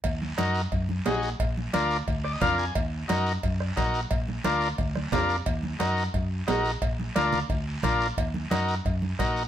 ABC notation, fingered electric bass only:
X:1
M:4/4
L:1/8
Q:1/4=177
K:Ebm
V:1 name="Fingered electric bass" clef=bass
E,,2 G,,2 G,,2 B,,,2 | B,,,2 =D,,2 D,,2 F,,2 | E,,2 G,,2 G,,2 B,,,2 | B,,,2 =D,,2 D,,2 F,,2 |
E,,2 G,,2 G,,2 B,,,2 | B,,,2 =D,,2 D,,2 B,,,2 | E,,2 G,,2 G,,2 B,,,2 |]